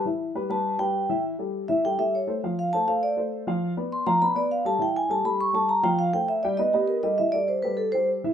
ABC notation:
X:1
M:4/4
L:1/8
Q:1/4=202
K:Ephr
V:1 name="Vibraphone"
z3 a2 g3 | z3 e g e _d z | z f a f d z3 | z2 c' _b =b d f a |
g _a =a b _d' a _b g | f g e d ^d G _B d | e d c B A c z2 |]
V:2 name="Upright piano"
[E,Ee]2 [G,GB] [G,GB]2 [G,GB]2 [E,Ee]- | [E,Ee] [G,GA]2 [E,Ee] [G,GA] [G,GA]2 [A,Ac] | [F,Ff]2 [A,Ac] [A,Ac]2 [A,Ac]2 [F,Ff]- | [F,Ff] [B,Bd]2 [F,Ff] [B,Bd] [B,Bd]2 [G,GA] |
[E,Ee]2 [G,GA] [G,GA]2 [G,GA]2 [F,Ff]- | [F,Ff] [A,Ac]2 [G,Gg] [B,B^d] [B,Bd]2 [G,GA] | [E,Ee] [G,GA]2 [G,GA]2 [G,GA]2 [E,Ee] |]